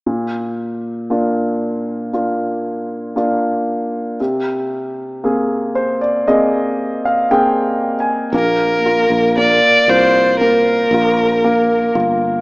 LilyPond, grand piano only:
\new Staff \with { instrumentName = "Grand piano" } { \time 4/4 \key bes \major \tempo 4 = 58 << { r1 | r4. c''16 d''16 ees''8. f''16 \tuplet 3/2 { g''4 aes''8 } | r1 | } \\ { bes,4 <bes d' f'>4 <bes d' f'>4 <bes d' f'>4 | c4 <bes c' aes'>4 <bes c' aes'>4 <bes c' aes'>4 | bes8 f'8 bes8 f'8 bes8 f'8 bes8 f'8 | } >> }